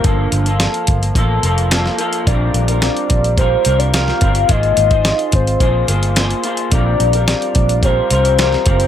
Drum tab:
HH |x-xxxxxxx-xxx-xx|x-xxxxxxx-xxx-xx|xxxxxxxxx-xxxxxx|x-xxxxxxx-xxx-xx|
SD |----o-------oo--|----o-------oo--|----o-------o---|----o-------oo--|
BD |o-----o-o-------|o-----o-o-----o-|o--o--o-o-------|o-----o-o-----o-|